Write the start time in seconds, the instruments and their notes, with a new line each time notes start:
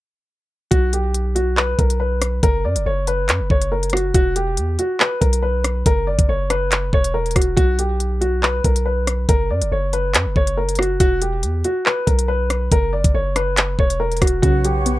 0.71 808-style bass B1, upright piano F#4, kick, closed hi-hat
0.93 upright piano G4, closed hi-hat
1.14 closed hi-hat
1.35 upright piano F#4, closed hi-hat
1.57 upright piano B4, clap
1.79 808-style bass B1, upright piano A#4, kick, closed hi-hat
1.90 closed hi-hat
2.00 upright piano B4
2.22 cross-stick, closed hi-hat
2.43 808-style bass F#1, upright piano A#4, kick, closed hi-hat
2.64 808-style bass F#2, upright piano D5
2.76 808-style bass F#1, closed hi-hat
2.86 808-style bass F#1, upright piano C#5
3.07 upright piano B4, closed hi-hat
3.29 808-style bass F#2, clap, closed hi-hat
3.40 808-style bass F#1
3.50 808-style bass F#1, upright piano C#5, kick
3.62 closed hi-hat
3.72 upright piano A#4
3.83 closed hi-hat
3.90 upright piano F#4, cross-stick, closed hi-hat
3.97 closed hi-hat
4.14 808-style bass E1, upright piano F#4, kick, closed hi-hat
4.36 upright piano G4, closed hi-hat
4.57 808-style bass E2, closed hi-hat
4.79 upright piano F#4, closed hi-hat
5.00 upright piano B4, clap
5.21 808-style bass B1, upright piano A#4, kick, closed hi-hat
5.33 closed hi-hat
5.43 upright piano B4
5.64 cross-stick, closed hi-hat
5.86 808-style bass F#1, upright piano A#4, kick, closed hi-hat
6.07 upright piano D5
6.19 808-style bass F#1, kick, closed hi-hat
6.29 808-style bass F#1, upright piano C#5
6.50 upright piano B4, cross-stick, closed hi-hat
6.72 clap, closed hi-hat
6.93 808-style bass E1, upright piano C#5, kick
7.04 closed hi-hat
7.14 upright piano A#4
7.26 closed hi-hat
7.31 closed hi-hat
7.36 808-style bass E1, upright piano F#4, kick, cross-stick, closed hi-hat
7.42 closed hi-hat
7.57 808-style bass B1, upright piano F#4, kick, closed hi-hat
7.79 upright piano G4, closed hi-hat
8.00 closed hi-hat
8.21 upright piano F#4, closed hi-hat
8.43 upright piano B4, clap
8.64 808-style bass B1, upright piano A#4, kick, closed hi-hat
8.76 closed hi-hat
8.86 upright piano B4
9.07 cross-stick, closed hi-hat
9.29 808-style bass F#1, upright piano A#4, kick, closed hi-hat
9.50 808-style bass F#2, upright piano D5
9.62 808-style bass F#1, closed hi-hat
9.72 808-style bass F#1, upright piano C#5
9.93 upright piano B4, closed hi-hat
10.14 808-style bass F#2, clap, closed hi-hat
10.26 808-style bass F#1
10.36 808-style bass F#1, upright piano C#5, kick
10.47 closed hi-hat
10.57 upright piano A#4
10.69 closed hi-hat
10.75 upright piano F#4, cross-stick, closed hi-hat
10.83 closed hi-hat
11.00 808-style bass E1, upright piano F#4, kick, closed hi-hat
11.22 upright piano G4, closed hi-hat
11.43 808-style bass E2, closed hi-hat
11.64 upright piano F#4, closed hi-hat
11.86 upright piano B4, clap
12.07 808-style bass B1, upright piano A#4, kick, closed hi-hat
12.19 closed hi-hat
12.28 upright piano B4
12.50 cross-stick, closed hi-hat
12.72 808-style bass F#1, upright piano A#4, kick, closed hi-hat
12.93 upright piano D5
13.04 808-style bass F#1, kick, closed hi-hat
13.14 808-style bass F#1, upright piano C#5
13.36 upright piano B4, cross-stick, closed hi-hat
13.57 clap, closed hi-hat
13.79 808-style bass E1, upright piano C#5, kick
13.90 closed hi-hat
14.00 upright piano A#4
14.12 closed hi-hat
14.17 closed hi-hat
14.21 808-style bass E1, upright piano F#4, kick, cross-stick, closed hi-hat
14.27 closed hi-hat
14.42 808-style bass B1, synth pluck C#3, upright piano F#4, flute section B4 C#5 F#5 C#6, kick, closed hi-hat
14.65 synth pluck F#3, upright piano G4, closed hi-hat
14.86 synth pluck B3, closed hi-hat